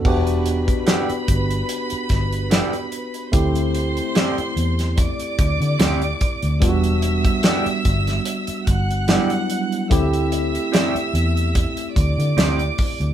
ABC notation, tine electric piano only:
X:1
M:4/4
L:1/8
Q:"Swing 16ths" 1/4=73
K:Em
V:1 name="Tine electric piano"
[B,DFG]8 | [A,CEG]8 | [G,B,D=F^F]6 [F,G,B,DE]2 | [A,CEG]8 |]